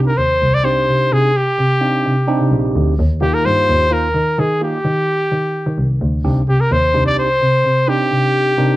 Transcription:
0.00 0.11 C4 medium
0.00 0.12 D4 medium
0.00 0.11 D#4 soft
0.00 0.11 G4 medium
0.07 0.19 A#4 medium
0.18 0.28 D#2 medium
0.18 0.56 C5 medium
0.42 0.88 C2 medium
0.54 0.66 D5 loud
0.64 1.30 C4 medium
0.64 1.30 D4 soft
0.64 1.30 D#4 medium
0.64 1.30 G4 medium
0.64 1.14 C5 medium
0.89 1.08 C3 medium
1.12 1.31 C3 medium
1.12 1.38 G#4 medium
1.37 2.76 G4 medium
1.59 1.97 C3 medium
1.81 2.14 C4 medium
1.81 2.14 D4 medium
1.81 2.14 D#4 medium
1.81 2.14 G4 medium
2.06 2.34 C3 medium
2.27 2.93 C4 medium
2.27 2.93 D4 medium
2.27 2.93 D#4 medium
2.27 2.93 G4 medium
2.40 2.49 C3 medium
2.52 2.71 A#1 medium
2.76 2.95 D2 medium
2.99 3.18 D#2 medium
3.21 3.31 D#3 medium
3.21 3.86 A#3 medium
3.21 3.87 D#4 medium
3.21 3.86 F4 medium
3.21 3.86 G4 medium
3.21 3.35 G4 medium
3.34 3.47 A#4 medium
3.45 3.55 G2 medium
3.45 3.94 C5 loud
3.69 4.14 D#2 medium
3.91 4.08 A#3 medium
3.91 4.07 D#4 medium
3.91 4.07 F4 medium
3.91 4.07 A#4 medium
3.91 4.41 A#4 medium
4.15 4.34 D#3 medium
4.38 4.58 D#3 medium
4.38 4.62 G#4 medium
4.61 4.78 A#3 medium
4.61 4.78 D#4 medium
4.61 4.78 F4 medium
4.61 4.78 G4 medium
4.61 5.98 G4 medium
4.85 5.23 D#3 medium
5.32 5.60 D#3 medium
5.67 5.76 D#3 medium
5.78 5.97 C2 medium
6.02 6.21 D2 medium
6.24 6.44 C2 medium
6.24 6.41 C4 medium
6.24 6.41 D4 medium
6.24 6.41 D#4 medium
6.24 6.41 G4 medium
6.49 6.58 C3 medium
6.49 6.62 G4 medium
6.61 6.74 A#4 medium
6.72 6.81 D#2 medium
6.72 7.06 C5 loud
6.94 7.41 C2 medium
6.94 7.27 C4 medium
6.94 7.27 D4 medium
6.94 7.27 D#4 medium
6.94 7.27 G4 medium
7.06 7.17 D5 loud
7.19 7.90 C5 medium
7.41 7.61 C3 medium
7.65 7.84 C3 medium
7.88 8.53 C4 medium
7.88 8.54 D4 medium
7.88 8.53 D#4 medium
7.88 8.53 G4 medium
7.88 8.77 G4 medium
8.12 8.50 C3 medium
8.58 8.77 C3 medium
8.58 8.77 C4 medium
8.58 8.77 D4 medium
8.58 8.77 D#4 medium
8.58 8.77 A#4 medium

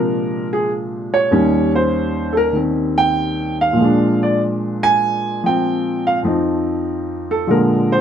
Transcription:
0.00 1.29 A#2 soft
0.00 1.32 C3 soft
0.00 1.30 F3 soft
0.00 1.32 G#3 soft
0.00 1.35 D4 medium
0.00 0.47 A#4 medium
0.53 0.70 G#4 medium
1.14 1.71 C#5 medium
1.31 3.78 D#2 medium
1.31 2.51 D#3 soft
1.31 3.78 G3 medium
1.31 3.78 C#4 medium
1.75 2.32 C5 medium
2.33 2.35 A4 medium
2.37 2.55 A#4 medium
2.53 3.77 D#3 soft
2.53 3.79 C4 soft
2.98 3.55 G5 medium
3.61 4.18 F5 medium
3.73 6.22 A#2 medium
3.73 5.42 F3 soft
3.81 6.26 G#3 soft
3.81 6.27 D4 medium
4.23 4.40 D5 medium
4.83 5.40 G#5 loud
5.44 6.23 F3 soft
5.44 6.24 C4 medium
5.44 6.03 G5 medium
6.07 6.18 F5 medium
6.22 7.47 F2 soft
6.22 7.46 F3 soft
6.22 7.48 C4 soft
6.28 7.49 D#4 medium
7.31 7.48 A4 medium
7.47 8.01 A#2 medium
7.47 8.01 D3 medium
7.47 8.01 F3 soft
7.47 8.01 G#3 soft
7.47 7.90 A#4 medium
7.92 8.01 C5 medium

